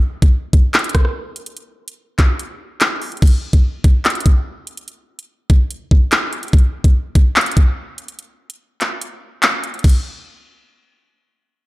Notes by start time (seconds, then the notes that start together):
0.22 kick, closed hi-hat
0.53 kick, closed hi-hat
0.74 clap, closed hi-hat
0.79 closed hi-hat
0.84 closed hi-hat
0.89 closed hi-hat
0.95 kick, cross-stick, closed hi-hat
1.05 cross-stick
1.36 closed hi-hat
1.46 closed hi-hat
1.57 closed hi-hat
1.88 closed hi-hat
2.19 kick, clap, closed hi-hat
2.39 closed hi-hat
2.81 clap, closed hi-hat
3.02 open hi-hat
3.12 closed hi-hat
3.17 closed hi-hat
3.22 kick, closed hi-hat, crash
3.27 closed hi-hat
3.53 kick, closed hi-hat
3.84 kick, closed hi-hat
4.05 clap, closed hi-hat
4.10 closed hi-hat
4.15 closed hi-hat
4.20 closed hi-hat
4.26 kick, closed hi-hat
4.67 closed hi-hat
4.77 closed hi-hat
4.88 closed hi-hat
5.19 closed hi-hat
5.50 kick, closed hi-hat
5.71 closed hi-hat
5.91 kick
6.12 clap, closed hi-hat
6.33 closed hi-hat
6.43 closed hi-hat
6.48 closed hi-hat
6.53 kick, closed hi-hat
6.58 closed hi-hat
6.84 kick, closed hi-hat
7.15 kick, closed hi-hat
7.36 clap, closed hi-hat
7.41 closed hi-hat
7.46 closed hi-hat
7.51 closed hi-hat
7.57 kick, closed hi-hat
7.98 closed hi-hat
8.08 closed hi-hat
8.19 closed hi-hat
8.50 closed hi-hat
8.81 clap, closed hi-hat
9.01 closed hi-hat
9.43 clap, closed hi-hat
9.64 closed hi-hat
9.74 closed hi-hat
9.79 closed hi-hat
9.84 kick, closed hi-hat, crash
9.89 closed hi-hat